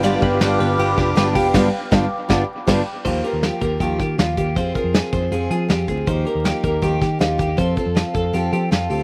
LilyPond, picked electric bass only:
\new Staff \with { instrumentName = "Picked electric bass" } { \clef bass \time 4/4 \key ees \major \tempo 4 = 159 g,,8 g,,8 g,,8 g,,8 g,,8 f,,8 g,,8 f,,8 | g,,8 r8 g,,8 r8 g,,8 r8 g,,8 r8 | ees,8 r16 ees,8 r16 ees,8 ees,8 ees8 ees,8 ees,8 | f,8 r16 f,8 r16 f,8 f,8 f8 f,8 d,8 |
ees,8 r16 ees,8 r16 ees,8 ees,8 ees8 ees,8 ees,8 | f,8 r16 f,8 r16 f,8 f,8 f8 f,8 d,8 | }